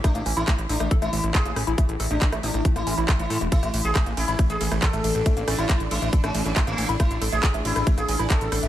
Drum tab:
RD |----------------|----------------|x-x-x-x-x-x-x-x-|x-x-x-x-x-x-x-x-|
HH |xxoxxxoxxxoxxxox|xxoxxxoxxxoxxxox|xxoxxxoxxxoxxxox|xxoxxxoxxxoxxxox|
CP |----x-------x---|----x-------x---|----x-------x---|----x-------x---|
SD |r-r-r--r-r-r--r-|r-r--r-r-r--r-r-|-r--r-r-r--r-r-r|--r-r----r-r-r--|
BD |o---o---o---o---|o---o---o---o---|o---o---o---o---|o---o---o---o---|

RD |x-x-x-x-x-x-x-x-|
HH |xxoxxxoxxxoxxxox|
CP |----x-------x---|
SD |r-r-r--r-r-r--r-|
BD |o---o---o---o---|